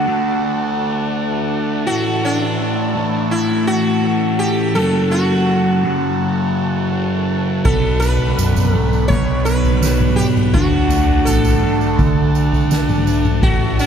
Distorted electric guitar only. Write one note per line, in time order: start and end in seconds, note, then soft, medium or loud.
0.07 1.86 D3 medium
0.07 1.88 A3 medium
0.07 1.85 D4 medium
1.87 2.93 A2 medium
1.87 2.94 E3 loud
1.87 2.94 A3 medium
2.95 4.75 A2 medium
2.95 4.74 E3 medium
2.95 4.74 A3 medium
4.75 5.82 F#2 loud
4.75 5.83 C#3 medium
4.75 5.84 F#3 loud
5.84 7.64 F#2 medium
5.84 7.64 C#3 medium
5.84 7.66 F#3 medium
7.64 8.71 B2 loud
7.64 8.75 F#3 loud
7.64 8.72 B3 loud
8.74 10.54 B2 medium
8.74 10.53 F#3 medium
8.74 10.52 B3 medium
10.54 11.61 D3 loud
10.54 11.64 A3 loud
10.54 11.62 D4 loud
11.63 13.42 D3 medium
11.63 13.44 A3 medium
11.63 13.41 D4 medium
13.43 13.86 A2 loud
13.43 13.86 E3 loud
13.43 13.86 A3 loud